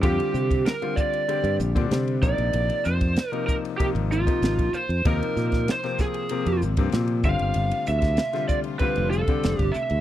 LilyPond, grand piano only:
\new Staff \with { instrumentName = "Grand piano" } { \time 4/4 \key bes \mixolydian \tempo 4 = 96 <d g c' f'>4 r16 <d g c' f'>8. <d g c' g'>8. <d g c' d'>8. <c f bes ees'>8~ | <c f bes ees'>4 r16 <c f bes ees'>8. <c f bes ees'>8. <c f bes ees'>8. <bes f'>16 r16 | <c f bes ees'>4 r16 <c f bes c'>8. <c f bes c'>8. <c f bes c'>8. <d g c' f'>8~ | <d g c' f'>4 r16 <d g c' f'>8. <d g c' f'>8. <d g c' d'>8. <c' d'>16 r16 | }